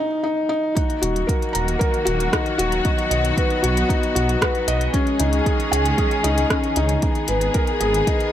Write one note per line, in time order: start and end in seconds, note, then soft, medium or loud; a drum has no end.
0.00 0.23 D#4 loud
0.23 0.48 D#4 loud
0.49 0.74 D#4 loud
0.75 4.89 D#3 medium
0.75 4.89 F#3 medium
0.75 2.83 A#3 medium
0.75 1.01 D#4 medium
0.75 4.89 F#4 loud
0.75 kick loud
0.75 closed hi-hat soft
0.90 closed hi-hat soft
1.02 1.24 D#1 loud
1.02 1.17 F#4 medium
1.02 closed hi-hat medium
1.16 closed hi-hat soft
1.27 1.43 A#4 medium
1.27 kick loud
1.27 closed hi-hat soft
1.42 closed hi-hat soft
1.53 1.76 D#1 medium
1.53 1.79 A#5 medium
1.53 closed hi-hat medium
1.68 closed hi-hat soft
1.79 2.05 A#4 medium
1.79 kick loud
1.79 closed hi-hat soft
1.94 closed hi-hat soft
2.05 2.28 D#1 loud
2.05 2.21 F#4 medium
2.05 closed hi-hat medium
2.20 closed hi-hat soft
2.32 2.57 D#4 medium
2.32 kick loud
2.32 cross-stick medium
2.32 closed hi-hat soft
2.46 closed hi-hat soft
2.58 2.80 D#1 medium
2.58 2.83 F#4 loud
2.58 closed hi-hat medium
2.72 closed hi-hat soft
2.85 4.92 B3 medium
2.85 3.10 D#4 medium
2.85 kick loud
2.85 closed hi-hat soft
2.98 closed hi-hat soft
3.11 3.32 B1 loud
3.11 3.36 D#5 medium
3.11 closed hi-hat medium
3.25 closed hi-hat soft
3.37 3.52 B4 medium
3.37 kick loud
3.37 closed hi-hat soft
3.50 closed hi-hat soft
3.63 3.84 B1 medium
3.63 3.88 F#4 medium
3.63 closed hi-hat medium
3.77 closed hi-hat soft
3.89 4.14 D#4 medium
3.89 kick loud
3.89 closed hi-hat soft
4.03 closed hi-hat soft
4.15 4.37 B1 loud
4.15 4.40 F#4 loud
4.15 closed hi-hat medium
4.29 closed hi-hat soft
4.41 4.66 B4 loud
4.41 kick loud
4.41 cross-stick medium
4.41 closed hi-hat soft
4.55 closed hi-hat soft
4.68 4.89 B1 medium
4.68 4.92 D#5 loud
4.68 closed hi-hat medium
4.81 closed hi-hat soft
4.93 7.00 D#3 medium
4.93 7.00 G#3 medium
4.93 7.00 C#4 medium
4.93 5.18 C#4 loud
4.93 7.00 G#4 loud
4.93 kick loud
4.93 closed hi-hat soft
5.07 closed hi-hat soft
5.20 5.41 C#2 loud
5.20 5.35 D#4 medium
5.20 closed hi-hat medium
5.33 closed hi-hat soft
5.46 5.61 G#4 medium
5.46 kick loud
5.46 closed hi-hat soft
5.60 closed hi-hat soft
5.72 5.93 C#2 medium
5.72 5.97 G#5 medium
5.72 closed hi-hat medium
5.86 closed hi-hat soft
5.98 6.23 G#4 medium
5.98 kick loud
5.98 closed hi-hat soft
6.11 closed hi-hat soft
6.24 6.45 C#2 loud
6.24 6.39 D#4 loud
6.24 closed hi-hat medium
6.38 closed hi-hat soft
6.50 6.75 C#4 medium
6.50 kick loud
6.50 cross-stick medium
6.50 closed hi-hat soft
6.64 closed hi-hat soft
6.76 6.97 C#2 medium
6.76 7.01 D#4 loud
6.76 closed hi-hat medium
6.89 closed hi-hat soft
7.02 8.32 D#3 medium
7.02 8.32 B3 medium
7.02 7.27 D#4 medium
7.02 8.32 G#4 medium
7.02 kick loud
7.02 closed hi-hat soft
7.15 closed hi-hat soft
7.28 7.50 G#1 loud
7.28 7.53 B4 medium
7.28 closed hi-hat medium
7.41 closed hi-hat soft
7.54 7.69 A#4 medium
7.54 kick loud
7.54 closed hi-hat soft
7.67 closed hi-hat soft
7.80 8.02 G#1 medium
7.80 8.05 G#4 medium
7.80 closed hi-hat medium
7.94 closed hi-hat soft
8.07 8.32 D#4 medium
8.07 kick loud
8.07 closed hi-hat soft
8.20 closed hi-hat soft